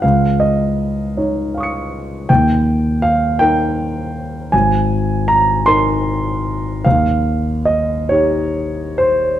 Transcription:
\new Staff \with { instrumentName = "Grand piano" } { \time 6/8 \key ees \mixolydian \tempo 4. = 53 << { f''8 ees''4 r8 <f'' des''' ees''' des''''>4 | g''4 f''8 g''4. | aes''4 bes''8 c'''4. | f''4 ees''8 des''4 c''8 | } \\ { des,4. <ees' des''>4. | ees,4. <ees' bes'>4. | aes,,4. <ees' bes'>4. | ees,4. <ees' g'>4. | } >> }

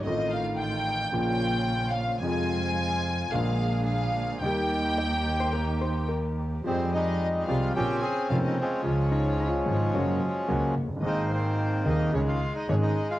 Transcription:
<<
  \new Staff \with { instrumentName = "Violin section" } { \time 4/4 \key ees \mixolydian \tempo 4 = 109 ees''8 f''8 g''2~ g''8 f''8 | aes''2 f''4 f''4 | g''2. r4 | \key f \minor c''8 ees''4 f''8 g''8 aes''8 f''16 ees''16 des''8~ |
des''2.~ des''8 r8 | ees''8 c''4 ees''8 des''16 f''8 ees''16 des''16 ees''8 f''16 | }
  \new Staff \with { instrumentName = "Hollow-body jazz guitar" } { \time 4/4 \key ees \mixolydian r1 | r1 | r4 ees''8. c''16 bes'8 c''8 bes'4 | \key f \minor r1 |
r8 ees'8 f'4 ges'4 bes8. r16 | r1 | }
  \new Staff \with { instrumentName = "String section" } { \time 4/4 \key ees \mixolydian <a ees' f'>2 <bes des' f'>2 | <aes c' f'>2 <bes d' aes'>2 | <bes ees' g'>1 | \key f \minor r1 |
r1 | r1 | }
  \new Staff \with { instrumentName = "Bandoneon" } { \time 4/4 \key ees \mixolydian r1 | r1 | r1 | \key f \minor c'8 ees'4 f'8 g'8 aes'8 f'16 ees'16 des'8~ |
des'2.~ des'8 r8 | ees'8 c'4 ees'8 des'16 f'8 ees'16 des'16 ees'8 f'16 | }
  \new Staff \with { instrumentName = "Bandoneon" } { \clef bass \time 4/4 \key ees \mixolydian r1 | r1 | r1 | \key f \minor <g aes>8 <g aes>4. <c' des'>4. <f aes>8~ |
<f aes>2.~ <f aes>8 r8 | <bes c'>8 ees4. aes2 | }
  \new Staff \with { instrumentName = "Grand piano" } { \clef bass \time 4/4 \key ees \mixolydian <a,, a, ees a c' f'>2 <bes,, bes, des f bes f'>2 | <f, c f aes f'>2 <bes,, bes, d aes bes f'>2 | <ees, ees g bes g'>1 | \key f \minor <f, f c' g'>4. <c, c f aes c' g'>8 <bes,, bes, des bes c' f'>8 r8 <f,, f, des bes c' f'>8 r8 |
<des, des f aes f'>4. <aes,, aes, des f aes f'>8 <ges, des ges bes ges'>8 r8 <des, des ges bes ges'>8 r32 f,,32 ges,,32 g,,32 | <aes,, aes, ees bes c' aes'>4. <ees,, ees, ees bes c' aes'>8 <des, des ees aes des' aes'>8 r8 <aes,, aes, ees aes des' aes'>8 r8 | }
  \new Staff \with { instrumentName = "Double bass" } { \clef bass \time 4/4 \key ees \mixolydian a,,2 bes,,2 | f,2 bes,,2 | ees,1 | \key f \minor f,4. c,8 bes,,8 r8 f,,8 r8 |
des,4. aes,,8 ges,,8 r8 des,8 ges,,8 | aes,,4. ees,8 des,8 r8 aes,,8 r8 | }
>>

